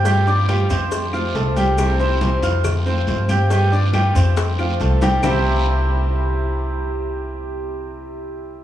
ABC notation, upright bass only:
X:1
M:4/4
L:1/8
Q:1/4=139
K:C
V:1 name="Upright bass" clef=bass
G,,3 F,,3 C,,2- | C,,3 F,,3 G,,2- | G,,3 F,,3 C,,2 | C,,8- |
C,,8 |]